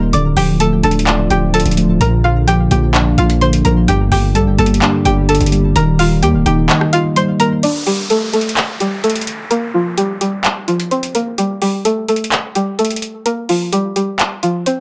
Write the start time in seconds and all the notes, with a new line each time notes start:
Already playing: D#1 D#3 G3 A#3 D#4 A#4 D#5 A#5
0.13 D1 D3 F3 A3 F4 D5 D6, closed hi-hat
0.37 D1 F3 G4 G5, open hi-hat
0.60 A3 A4 A5, closed hi-hat
0.83 D1 D4 A4 A5, closed hi-hat
0.91 closed hi-hat
0.99 closed hi-hat
1.06 D5, clap, closed hi-hat
1.30 D1 G4 G5, closed hi-hat
1.53 F3 A4 A5, closed hi-hat
1.60 closed hi-hat
1.66 D1, closed hi-hat
1.71 closed hi-hat
1.77 A3, closed hi-hat
2.00 A#1 A#2 A#3 A#4 A#5, closed hi-hat
2.24 D3 F4 F5
2.48 F3 G4 G5, closed hi-hat
2.71 A#1 A#3 G4 G5, closed hi-hat
2.94 D4, clap, closed hi-hat
3.18 A#1 F4 F5, closed hi-hat
3.30 closed hi-hat
3.41 D3 C5 C6, closed hi-hat
3.53 closed hi-hat
3.65 A#1 F3 A#4 A#5, closed hi-hat
3.88 G1 G2 D3 G3 G4 G5, closed hi-hat
4.11 G1 D3 G4 G5, open hi-hat
4.35 A#1 G3 A4 A5, closed hi-hat
4.47 G1
4.58 G1 A#3 A4 A5, closed hi-hat
4.66 closed hi-hat
4.74 closed hi-hat
4.82 D4, clap, closed hi-hat
5.05 G1 G4 G5, closed hi-hat
5.29 D3 A4 A5, closed hi-hat
5.35 closed hi-hat
5.41 G1, closed hi-hat
5.46 closed hi-hat
5.52 G3, closed hi-hat
5.76 D#1 D#3 A#4 A#5, closed hi-hat
5.99 G3 F4 F5, open hi-hat
6.23 D#2 A#3 G4 G5, closed hi-hat
6.34 D#1
6.46 D#1 D#4 G4 G5, closed hi-hat
6.69 D#5, clap, closed hi-hat
6.81 cross-stick
6.93 F4 F5, closed hi-hat
7.16 G3 C5 C6, closed hi-hat
7.40 A#3 A#4 A#5, closed hi-hat
7.63 D4 D5, closed hi-hat, downlifter
7.86 G3 G4, open hi-hat
8.10 A3 A4, closed hi-hat
8.33 A3 A4, closed hi-hat
8.41 closed hi-hat
8.49 closed hi-hat
8.57 clap, closed hi-hat
8.80 G3 G4, closed hi-hat
9.04 A3 A4, closed hi-hat
9.10 closed hi-hat
9.16 closed hi-hat
9.21 closed hi-hat
9.27 closed hi-hat
9.51 A#3 A#4, closed hi-hat
9.74 F3 F4
9.98 G3 G4, closed hi-hat
10.21 G3 G4, closed hi-hat
10.44 clap, closed hi-hat
10.68 F3 F4, closed hi-hat
10.80 closed hi-hat
10.91 C4 C5, closed hi-hat
11.03 closed hi-hat
11.15 A#3 A#4, closed hi-hat
11.38 G3 G4, closed hi-hat
11.62 G3 G4, open hi-hat
11.85 A3 A4, closed hi-hat
12.08 A3 A4, closed hi-hat
12.16 closed hi-hat
12.24 closed hi-hat
12.32 clap, closed hi-hat
12.55 G3 G4, closed hi-hat
12.79 A3 A4, closed hi-hat
12.85 closed hi-hat
12.91 closed hi-hat
12.96 closed hi-hat
13.02 closed hi-hat
13.26 A#3 A#4, closed hi-hat
13.49 F3 F4, open hi-hat
13.73 G3 G4, closed hi-hat
13.96 G3 G4, closed hi-hat
14.19 clap, closed hi-hat
14.43 F3 F4, closed hi-hat
14.66 C4 C5, closed hi-hat